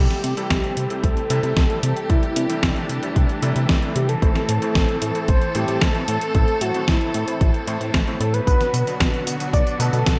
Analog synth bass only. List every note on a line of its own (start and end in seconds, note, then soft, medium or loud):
0.24 0.34 C3 medium
0.50 0.61 C2 medium
0.77 0.87 C3 medium
1.04 1.14 C2 loud
1.30 1.40 C3 medium
1.43 1.54 C3 loud
1.57 1.67 C2 medium
1.83 1.93 C3 loud
2.10 2.20 C2 loud
2.36 2.46 C3 loud
2.63 2.73 C2 medium
2.89 3.00 C3 medium
3.16 3.26 C2 medium
3.43 3.53 C3 medium
3.56 3.66 C3 medium
3.69 3.79 C2 loud
3.96 4.16 C3 medium
4.22 4.32 A1 loud
4.49 4.59 A2 medium
4.75 4.85 A1 medium
5.02 5.12 A2 medium
5.28 5.39 A1 loud
5.55 5.65 A2 medium
5.68 5.78 A2 loud
5.82 5.92 A1 loud
6.08 6.18 A2 loud
6.35 6.45 A1 loud
6.61 6.71 A2 medium
6.88 6.98 A1 medium
7.14 7.24 A2 medium
7.41 7.51 A1 medium
7.68 7.78 A2 medium
7.81 7.91 A2 medium
7.94 8.04 A1 medium
8.20 8.41 A2 medium
8.47 8.57 B1 loud
8.74 8.84 B2 medium
9.00 9.10 B1 medium
9.27 9.37 B2 medium
9.53 9.63 B1 loud
9.80 9.90 B2 medium
9.93 10.03 B2 loud
10.06 10.16 B1 loud